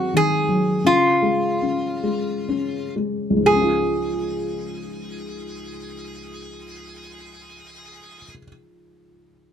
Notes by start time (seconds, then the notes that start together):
Already playing: G#2 D#3 F#3 C4 F#4
0.14 D#3 G#4
0.49 F#3
0.84 C#3 F4
1.22 G#3
1.62 C#4
2.03 G#3
2.49 C#4
2.96 G#3
3.30 C#2
3.37 G#2
3.43 F3 G#4
3.49 G#3
3.55 C#4
3.62 F4